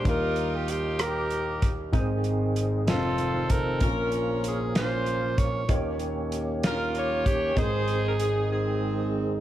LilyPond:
<<
  \new Staff \with { instrumentName = "Alto saxophone" } { \time 6/8 \key aes \major \tempo 4. = 64 f'4 g'8 bes'4 r8 | r4. a'4 bes'8 | r4. c''4 des''8 | r4. f'4 g'8 |
aes'2 r4 | }
  \new Staff \with { instrumentName = "Saxophone section" } { \time 6/8 \key aes \major << { bes'8. g'16 f'8 g'4 r8 | r4. f'4 a'8 | bes'8 bes'8 aes'8 f'4 r8 | r4. bes'8 des''4 |
c''8. bes'16 aes'8 aes'4 r8 | } \\ { <ees' g'>4. <bes ees'>4. | r4. c'4. | <des' f'>4. <bes des'>4. | r2 <g' bes'>4 |
<ees' aes'>4. <c' ees'>4. | } >> }
  \new Staff \with { instrumentName = "Grand piano" } { \time 6/8 \key aes \major <ees, ees g bes ees' bes'>2. | <aes,, aes, aes c' ees' bes' c''>4. <f,, f, c' ees' f' c''>4. | <bes,, bes, bes des' f' bes' c''>2. | <ees, ees bes ees' g' des''>2. |
<aes,, aes, c' ees' aes' ees''>2. | }
  \new Staff \with { instrumentName = "Tonewheel organ" } { \time 6/8 \key aes \major r2. | <ees aes c' aes'>4. <ees f g c' f'>4. | <f bes des' bes'>2. | <ees bes des' f' g'>2. |
<ees aes c' aes'>2. | }
  \new DrumStaff \with { instrumentName = "Drums" } \drummode { \time 6/8 <hh bd>8 hh8 hh8 <hh ss>8 hh8 <hh bd>8 | <hh bd>8 hh8 hh8 <hh sn>8 hh8 <hh bd>8 | <hh bd>8 hh8 hh8 <hh sn>8 hh8 <hh bd>8 | <hh bd>8 hh8 hh8 <hh sn>8 hh8 <hh bd>8 |
<hh bd>8 hh8 hh8 r4. | }
>>